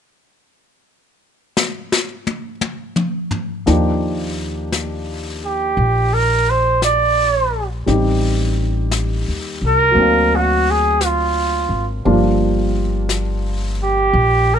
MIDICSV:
0, 0, Header, 1, 5, 480
1, 0, Start_track
1, 0, Key_signature, -3, "major"
1, 0, Tempo, 1048951
1, 1676, Time_signature, 4, 2, 24, 8
1, 4078, Tempo, 1041667
1, 6695, End_track
2, 0, Start_track
2, 0, Title_t, "Trumpet"
2, 0, Program_c, 0, 56
2, 2494, Note_on_c, 0, 67, 67
2, 2808, Note_on_c, 0, 70, 68
2, 2814, Note_off_c, 0, 67, 0
2, 2973, Note_on_c, 0, 72, 65
2, 2980, Note_off_c, 0, 70, 0
2, 3126, Note_off_c, 0, 72, 0
2, 3131, Note_on_c, 0, 74, 75
2, 3505, Note_off_c, 0, 74, 0
2, 4424, Note_on_c, 0, 70, 83
2, 4744, Note_on_c, 0, 66, 70
2, 4751, Note_off_c, 0, 70, 0
2, 4904, Note_on_c, 0, 68, 72
2, 4911, Note_off_c, 0, 66, 0
2, 5063, Note_on_c, 0, 65, 60
2, 5070, Note_off_c, 0, 68, 0
2, 5451, Note_off_c, 0, 65, 0
2, 6342, Note_on_c, 0, 67, 75
2, 6671, Note_on_c, 0, 70, 67
2, 6678, Note_off_c, 0, 67, 0
2, 6695, Note_off_c, 0, 70, 0
2, 6695, End_track
3, 0, Start_track
3, 0, Title_t, "Grand piano"
3, 0, Program_c, 1, 0
3, 1675, Note_on_c, 1, 53, 43
3, 1676, Note_on_c, 1, 58, 40
3, 1680, Note_on_c, 1, 62, 39
3, 1681, Note_on_c, 1, 63, 40
3, 1682, Note_on_c, 1, 67, 48
3, 1766, Control_c, 1, 64, 127
3, 3598, Note_off_c, 1, 63, 0
3, 3598, Note_on_c, 1, 55, 40
3, 3599, Note_off_c, 1, 67, 0
3, 3600, Note_off_c, 1, 53, 0
3, 3600, Note_off_c, 1, 58, 0
3, 3602, Note_off_c, 1, 62, 0
3, 3602, Note_on_c, 1, 60, 35
3, 3605, Note_on_c, 1, 63, 40
3, 3605, Note_on_c, 1, 67, 46
3, 3606, Control_c, 1, 64, 0
3, 3680, Control_c, 1, 64, 127
3, 4539, Note_on_c, 1, 54, 45
3, 4552, Note_on_c, 1, 58, 40
3, 4556, Note_off_c, 1, 60, 0
3, 4559, Note_off_c, 1, 55, 0
3, 4563, Note_off_c, 1, 63, 0
3, 4563, Note_off_c, 1, 67, 0
3, 4563, Note_on_c, 1, 60, 38
3, 4566, Control_c, 1, 64, 0
3, 4578, Note_on_c, 1, 62, 39
3, 4589, Note_on_c, 1, 77, 50
3, 4661, Control_c, 1, 64, 127
3, 5512, Note_off_c, 1, 54, 0
3, 5518, Note_off_c, 1, 58, 0
3, 5522, Note_off_c, 1, 62, 0
3, 5523, Note_off_c, 1, 60, 0
3, 5524, Note_on_c, 1, 53, 50
3, 5525, Note_on_c, 1, 55, 44
3, 5527, Note_on_c, 1, 58, 47
3, 5528, Control_c, 1, 64, 0
3, 5529, Note_on_c, 1, 62, 45
3, 5531, Note_on_c, 1, 65, 54
3, 5536, Note_off_c, 1, 77, 0
3, 5615, Control_c, 1, 64, 127
3, 6695, Note_off_c, 1, 53, 0
3, 6695, Note_off_c, 1, 55, 0
3, 6695, Note_off_c, 1, 58, 0
3, 6695, Note_off_c, 1, 62, 0
3, 6695, Note_off_c, 1, 65, 0
3, 6695, End_track
4, 0, Start_track
4, 0, Title_t, "Upright bass"
4, 0, Program_c, 2, 32
4, 1681, Note_on_c, 2, 39, 67
4, 2623, Note_off_c, 2, 39, 0
4, 2640, Note_on_c, 2, 34, 72
4, 3582, Note_off_c, 2, 34, 0
4, 3603, Note_on_c, 2, 33, 67
4, 4223, Note_off_c, 2, 33, 0
4, 4249, Note_on_c, 2, 39, 50
4, 4394, Note_off_c, 2, 39, 0
4, 4403, Note_on_c, 2, 36, 54
4, 4551, Note_off_c, 2, 36, 0
4, 4560, Note_on_c, 2, 38, 66
4, 5339, Note_off_c, 2, 38, 0
4, 5358, Note_on_c, 2, 32, 55
4, 5511, Note_off_c, 2, 32, 0
4, 5526, Note_on_c, 2, 31, 69
4, 6463, Note_off_c, 2, 31, 0
4, 6485, Note_on_c, 2, 34, 73
4, 6695, Note_off_c, 2, 34, 0
4, 6695, End_track
5, 0, Start_track
5, 0, Title_t, "Drums"
5, 718, Note_on_c, 9, 38, 58
5, 763, Note_off_c, 9, 38, 0
5, 880, Note_on_c, 9, 38, 61
5, 926, Note_off_c, 9, 38, 0
5, 1038, Note_on_c, 9, 48, 63
5, 1084, Note_off_c, 9, 48, 0
5, 1196, Note_on_c, 9, 48, 69
5, 1241, Note_off_c, 9, 48, 0
5, 1355, Note_on_c, 9, 47, 64
5, 1400, Note_off_c, 9, 47, 0
5, 1514, Note_on_c, 9, 43, 71
5, 1560, Note_off_c, 9, 43, 0
5, 1678, Note_on_c, 9, 25, 32
5, 1678, Note_on_c, 9, 38, 24
5, 1724, Note_off_c, 9, 38, 0
5, 2162, Note_off_c, 9, 25, 0
5, 2162, Note_on_c, 9, 25, 31
5, 2162, Note_on_c, 9, 38, 37
5, 2162, Note_on_c, 9, 44, 43
5, 2208, Note_off_c, 9, 38, 0
5, 2208, Note_off_c, 9, 44, 0
5, 2641, Note_off_c, 9, 25, 0
5, 2641, Note_on_c, 9, 25, 32
5, 3122, Note_off_c, 9, 25, 0
5, 3122, Note_on_c, 9, 25, 33
5, 3122, Note_on_c, 9, 38, 40
5, 3122, Note_on_c, 9, 44, 54
5, 3167, Note_off_c, 9, 38, 0
5, 3167, Note_off_c, 9, 44, 0
5, 3603, Note_off_c, 9, 25, 0
5, 3603, Note_on_c, 9, 25, 34
5, 3603, Note_on_c, 9, 38, 22
5, 3649, Note_off_c, 9, 38, 0
5, 4079, Note_off_c, 9, 25, 0
5, 4079, Note_on_c, 9, 25, 36
5, 4079, Note_on_c, 9, 38, 40
5, 4079, Note_on_c, 9, 44, 41
5, 4125, Note_off_c, 9, 38, 0
5, 4125, Note_off_c, 9, 44, 0
5, 4564, Note_off_c, 9, 25, 0
5, 4564, Note_on_c, 9, 25, 33
5, 5044, Note_off_c, 9, 25, 0
5, 5044, Note_on_c, 9, 25, 31
5, 5044, Note_on_c, 9, 38, 39
5, 5044, Note_on_c, 9, 44, 43
5, 5090, Note_off_c, 9, 38, 0
5, 5090, Note_off_c, 9, 44, 0
5, 5527, Note_off_c, 9, 25, 0
5, 5527, Note_on_c, 9, 25, 28
5, 6004, Note_off_c, 9, 25, 0
5, 6004, Note_on_c, 9, 25, 35
5, 6004, Note_on_c, 9, 38, 36
5, 6004, Note_on_c, 9, 44, 45
5, 6050, Note_off_c, 9, 38, 0
5, 6050, Note_off_c, 9, 44, 0
5, 6481, Note_off_c, 9, 25, 0
5, 6481, Note_on_c, 9, 25, 27
5, 6695, Note_off_c, 9, 25, 0
5, 6695, End_track
0, 0, End_of_file